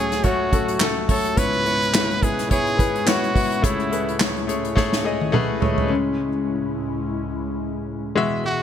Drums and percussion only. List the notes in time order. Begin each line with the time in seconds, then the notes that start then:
0.12 snare, closed hi-hat
0.24 kick, closed hi-hat
0.53 kick, closed hi-hat
0.68 closed hi-hat
0.80 snare, clap
1.09 kick, open hi-hat
1.25 closed hi-hat
1.37 kick, closed hi-hat
1.53 closed hi-hat
1.66 closed hi-hat
1.82 closed hi-hat
1.94 snare, clap
2.11 closed hi-hat
2.23 kick, closed hi-hat
2.39 snare, closed hi-hat
2.51 kick, closed hi-hat
2.67 closed hi-hat
2.79 kick, closed hi-hat
2.96 closed hi-hat
3.07 snare, clap
3.24 closed hi-hat
3.36 kick, open hi-hat
3.52 closed hi-hat
3.64 kick, closed hi-hat
3.80 closed hi-hat
3.93 closed hi-hat
4.09 closed hi-hat
4.20 snare, clap
4.37 closed hi-hat
4.49 closed hi-hat
4.65 closed hi-hat
4.77 kick, snare
4.93 snare
5.21 high tom
5.34 mid tom
5.62 floor tom
5.78 floor tom